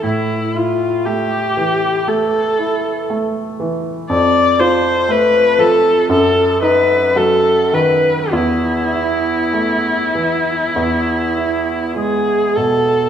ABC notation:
X:1
M:4/4
L:1/8
Q:1/4=59
K:Ephr
V:1 name="Viola"
E F G2 A2 z2 | d c B A A B A B | E6 ^G A |]
V:2 name="Grand piano" clef=bass
A,, E A, E, A, E A, E, | F,, F A, F, ^F,, ^D ^F, ^D, | E,, E A, E, E,, E ^G, B,, |]